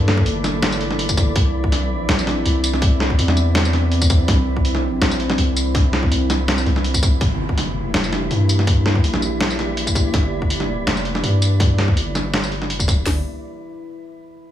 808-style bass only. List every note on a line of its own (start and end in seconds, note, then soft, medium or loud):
0.00 0.25 G2 loud
0.26 1.34 G1 loud
1.36 1.87 C2 loud
1.87 2.08 B1 loud
2.09 2.44 A#1 loud
2.46 3.17 C2 loud
3.19 4.27 E2 loud
4.28 4.79 C2 loud
4.79 5.00 B1 loud
5.02 5.37 A#1 loud
5.38 6.10 C2 loud
6.11 6.65 C2 loud
6.66 7.20 C2 loud
7.21 7.72 G1 loud
7.72 7.93 F#1 loud
7.94 8.29 F1 medium
8.31 9.03 G2 loud
9.04 10.12 A#1 loud
10.14 10.86 G1 loud
10.87 11.22 F1 loud
11.23 11.95 G2 loud
11.96 13.05 G1 loud
13.06 13.23 G1 loud